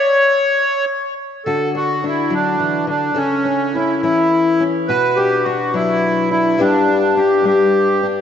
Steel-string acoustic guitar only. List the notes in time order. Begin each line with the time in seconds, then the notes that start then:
1.46 D3 F#4
1.75 D4
2.04 D4
2.30 F#3
2.60 E3
2.87 D3
3.15 C#3 A4
3.45 C#4
3.76 C#4
4.03 E3 C#4
4.60 C#4
4.89 B2 F#4
5.18 D4
5.46 D4
5.74 F#3 D4
6.31 D4
6.58 G2 G3 B3 D4 G4
6.88 D4
7.17 D4
7.44 G3 D4
8.03 D4